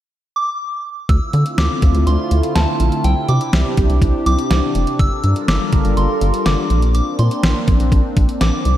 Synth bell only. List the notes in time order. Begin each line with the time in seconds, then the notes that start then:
0.36 D6
1.09 E6
1.58 D6
2.07 C6
2.55 A5
3.04 G5
3.29 D6
4.26 D6
4.99 E6
5.48 D6
5.97 C6
6.46 D6
6.95 D6
7.19 C6
8.41 D6